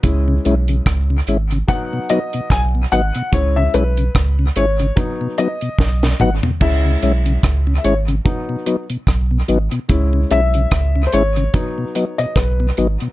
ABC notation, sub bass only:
X:1
M:4/4
L:1/16
Q:"Swing 16ths" 1/4=73
K:C#m
V:1 name="Sub bass" clef=bass
C,,2 B,,,2 C,,2 G,,,2 z4 B,,,2 G,,, z | C,,2 B,,,2 C,,2 G,,,2 z4 B,,,2 G,,, z | C,,2 B,,,2 C,,2 G,,,2 z4 B,,,2 G,,, z | C,,2 B,,,2 C,,2 G,,,2 z4 B,,,2 G,,, z |]